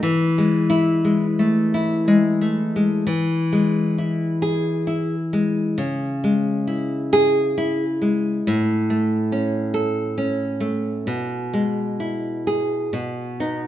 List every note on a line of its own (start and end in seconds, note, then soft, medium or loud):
0.03 3.03 E3 medium
0.38 1.03 G#3 medium
0.70 1.25 E4 medium
1.05 2.07 G#3 medium
1.39 2.40 A3 soft
1.74 3.07 E4 medium
2.08 2.75 G#3 medium
2.41 3.07 A3 soft
2.76 3.07 G#3 medium
3.07 5.75 E3 medium
3.53 4.88 G#3 medium
3.98 4.86 E4 medium
4.42 5.15 G#4 medium
4.87 5.78 E4 medium
5.33 5.79 G#3 medium
5.78 8.42 C#3 medium
6.24 7.58 G#3 medium
6.67 7.56 E4 medium
7.13 7.84 G#4 medium
7.58 8.46 E4 medium
8.02 8.46 G#3 medium
8.47 11.04 A2 medium
8.90 10.18 A3 medium
9.32 10.16 C#4 medium
9.74 10.44 A4 medium
10.18 11.07 C#4 medium
10.60 11.06 A3 medium
11.07 12.89 B2 medium
11.54 12.93 G#3 medium
12.00 12.93 E4 soft
12.47 12.93 G#4 medium
12.93 13.67 B2 medium
13.40 13.67 B3 soft
13.40 13.67 D#4 medium